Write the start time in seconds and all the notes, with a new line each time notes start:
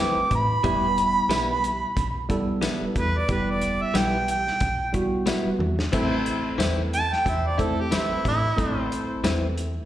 Already playing: E3 A3 C4 E4 B4
0.00 C4 E4 D6
0.16 A1
0.31 A2, kick, closed hi-hat
0.35 B5
0.63 E1 G3 B3 E4 G4, kick, closed hi-hat
0.98 closed hi-hat
1.29 B1 G3 B3 E4, snare, closed hi-hat, tambourine
1.64 closed hi-hat
1.97 B1, kick, closed hi-hat
2.29 G3 B3 E4 A4, kick, closed hi-hat
2.62 G3 B3 E4, snare, closed hi-hat, tambourine
2.81 E1
2.96 E2 B4, kick, closed hi-hat
3.18 D5
3.29 E1 G3 B3 E4 G4 B4, kick, closed hi-hat
3.50 D5
3.62 closed hi-hat
3.82 E5
3.94 B1 G3 B3 E4, snare, closed hi-hat, tambourine
3.98 G5
4.28 G5, closed hi-hat
4.47 snare
4.60 B1, kick, closed hi-hat
4.92 G3 B3 E4 F#4, kick, closed hi-hat
5.26 G3 B3 E4, snare, closed hi-hat, tambourine
5.45 E1
5.59 E2, high tom
5.79 snare
5.91 A1 E3 A3 C4 E4 A4 C5, kick, closed hi-hat, crash
6.26 closed hi-hat
6.58 E2 E3 C4 E4, snare, closed hi-hat, tambourine
6.93 A5, closed hi-hat
7.12 G5, snare
7.25 E2 E4 A4 C5 E5, kick, closed hi-hat
7.47 D5
7.58 A3 C4 E4 A4, kick, closed hi-hat
7.62 A4
7.81 G4
7.90 E3 C4 E4 A4 C5, snare, closed hi-hat, tambourine
7.95 E4
8.10 A1
8.25 A2 E4, kick, closed hi-hat
8.56 A1 A3 C4 E4 A4 C5, kick, closed hi-hat
8.92 closed hi-hat
9.24 E2 E3 C4 E4, snare, closed hi-hat, tambourine
9.58 closed hi-hat